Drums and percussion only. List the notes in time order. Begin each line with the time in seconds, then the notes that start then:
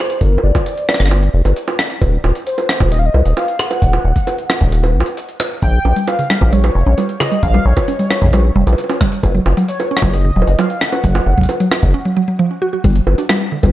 0.10 closed hi-hat
0.21 kick, closed hi-hat
0.38 high bongo
0.55 kick, closed hi-hat, high bongo
0.66 closed hi-hat
0.78 closed hi-hat
0.89 cross-stick, high bongo
0.94 cross-stick
1.00 cross-stick, closed hi-hat
1.06 cross-stick
1.11 closed hi-hat, high bongo
1.23 closed hi-hat
1.45 closed hi-hat, high bongo
1.56 closed hi-hat
1.68 closed hi-hat, high bongo
1.79 cross-stick
1.90 closed hi-hat
2.02 kick, closed hi-hat, high bongo
2.24 high bongo
2.35 closed hi-hat
2.47 closed hi-hat
2.58 closed hi-hat, high bongo
2.69 cross-stick
2.80 kick, closed hi-hat, high bongo
2.92 closed hi-hat
3.14 high bongo
3.26 closed hi-hat
3.37 closed hi-hat, high bongo
3.48 closed hi-hat
3.59 cross-stick
3.71 closed hi-hat, high bongo
3.82 kick, closed hi-hat
3.93 high bongo
4.16 kick, closed hi-hat
4.27 closed hi-hat, high bongo
4.38 closed hi-hat
4.50 cross-stick, high bongo
4.61 kick, closed hi-hat
4.72 closed hi-hat
4.84 closed hi-hat, high bongo
5.00 high bongo
5.06 closed hi-hat
5.17 closed hi-hat
5.29 closed hi-hat
5.40 cross-stick, high bongo
5.62 kick, closed hi-hat
5.85 high bongo
5.96 closed hi-hat
6.08 closed hi-hat, high bongo
6.19 closed hi-hat
6.30 cross-stick
6.41 kick, high bongo
6.53 closed hi-hat
6.64 high bongo
6.98 closed hi-hat, high bongo
7.09 closed hi-hat
7.20 cross-stick, high bongo
7.32 closed hi-hat
7.43 kick, closed hi-hat
7.54 high bongo
7.77 kick, closed hi-hat, high bongo
7.88 closed hi-hat
7.99 closed hi-hat
8.11 cross-stick, high bongo
8.22 kick, closed hi-hat
8.24 kick
8.26 kick
8.29 kick
8.31 kick, closed hi-hat, high bongo
8.67 closed hi-hat, high bongo
8.73 high bongo
8.78 closed hi-hat, high bongo
8.84 high bongo
8.90 closed hi-hat, high bongo
9.01 kick, cross-stick
9.12 closed hi-hat
9.23 kick, closed hi-hat, high bongo
9.46 high bongo
9.57 closed hi-hat
9.68 closed hi-hat
9.80 closed hi-hat, high bongo
9.97 cross-stick
10.02 kick, closed hi-hat, high bongo
10.06 closed hi-hat
10.10 closed hi-hat
10.14 closed hi-hat
10.21 closed hi-hat
10.42 high bongo
10.47 closed hi-hat
10.59 closed hi-hat, high bongo
10.70 closed hi-hat
10.81 cross-stick
10.93 closed hi-hat, high bongo
11.04 kick, closed hi-hat
11.15 high bongo
11.38 kick
11.41 kick, closed hi-hat
11.45 kick, closed hi-hat, high bongo
11.60 closed hi-hat
11.72 cross-stick, high bongo
11.83 kick, closed hi-hat
12.84 kick, closed hi-hat
12.87 closed hi-hat
12.90 closed hi-hat
12.93 closed hi-hat
12.95 closed hi-hat
13.07 high bongo
13.18 closed hi-hat
13.29 cross-stick, closed hi-hat, high bongo
13.41 closed hi-hat
13.63 kick, closed hi-hat, high bongo